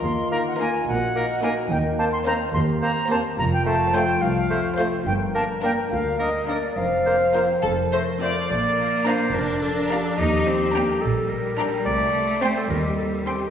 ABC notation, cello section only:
X:1
M:6/8
L:1/8
Q:3/8=71
K:Ebdor
V:1 name="Cello section" clef=bass
E,,3 B,,3 | [K:Bb] E,,3 E,,3 | F,,3 C,,3 | G,,3 D,,3 |
F,,3 F,,3 | B,3 D3 | E C B, G,3 | A,3 G,3 |]